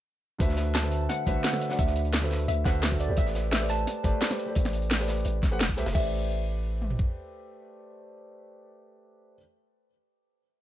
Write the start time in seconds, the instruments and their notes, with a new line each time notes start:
0.39 808-style bass D2, felt piano D3 A3 F#4 B4 C5 E5, kick, closed hi-hat
0.49 snare, closed hi-hat
0.57 snare, closed hi-hat, shaker
0.75 synth pluck A5, snare, closed hi-hat
0.82 felt piano D3 A3 F#4 B4 C5 E5, closed hi-hat
0.92 closed hi-hat, open hi-hat, shaker
1.09 synth pluck F#5, snare, closed hi-hat
1.26 808-style bass C2, felt piano D3 A3 F#4 B4 C5 E5, kick, closed hi-hat, shaker
1.44 synth pluck F#5, snare, closed hi-hat, shaker
1.52 felt piano D3 A3 F#4 B4 C5 E5, snare, closed hi-hat
1.62 closed hi-hat, open hi-hat, shaker
1.69 felt piano D3 A3 F#4 B4 C5 D5, synth pluck F#5, snare
1.79 808-style bass D2, synth pluck E5, kick, closed hi-hat
1.87 snare, closed hi-hat
1.96 closed hi-hat, shaker
2.05 closed hi-hat
2.13 snare, closed hi-hat
2.21 felt piano D3 A3 F#4 B4 C5 E5, snare
2.30 snare, closed hi-hat, open hi-hat, shaker
2.39 closed hi-hat
2.48 808-style bass D2, synth pluck E5, closed hi-hat
2.65 808-style bass D2, felt piano D3 A3 F#4 B4 C5 E5, synth pluck F#5, kick, snare, closed hi-hat, shaker
2.82 snare, closed hi-hat, shaker
2.91 felt piano D3 A3 F#4 B4 C5 E5, kick, snare, closed hi-hat
3.00 synth pluck D5, closed hi-hat, open hi-hat, shaker
3.07 808-style bass D2, felt piano A3 G4 B4 C5 D5
3.17 808-style bass A1, synth pluck E5, kick, closed hi-hat
3.26 snare, closed hi-hat
3.35 snare, closed hi-hat, shaker
3.52 synth pluck E5, snare, closed hi-hat
3.59 felt piano A3 G4 B4 C5 D5, closed hi-hat
3.69 synth pluck A5, snare, closed hi-hat, open hi-hat, shaker
3.87 snare, closed hi-hat
4.03 808-style bass G1, felt piano A3 G4 B4 C5 D5, kick, closed hi-hat, shaker
4.21 snare, closed hi-hat, shaker
4.30 felt piano A3 G4 B4 C5 D5, snare, closed hi-hat
4.39 open hi-hat, shaker
4.46 felt piano A3 G4 B4 C5 D5
4.55 808-style bass A1, kick, closed hi-hat
4.65 snare, closed hi-hat
4.73 closed hi-hat, shaker
4.82 closed hi-hat
4.91 snare, closed hi-hat
4.98 felt piano A3 G4 B4 C5 D5, snare
5.08 snare, closed hi-hat, open hi-hat, shaker
5.17 closed hi-hat
5.25 808-style bass A1, closed hi-hat
5.43 808-style bass A1, kick, snare, closed hi-hat, shaker
5.51 felt piano A3 G4 B4 C5 F#5
5.60 808-style bass E1, snare, closed hi-hat, shaker
5.69 808-style bass C2, kick, closed hi-hat
5.77 felt piano A3 G4 B4 C5 E5, snare, closed hi-hat, open hi-hat, shaker
5.86 808-style bass E1, snare, closed hi-hat
5.92 808-style bass A1, felt piano A3 G4 B4 C5, synth pluck E5, kick, crash
5.98 felt piano D5
6.82 mid tom
6.90 floor tom
6.99 kick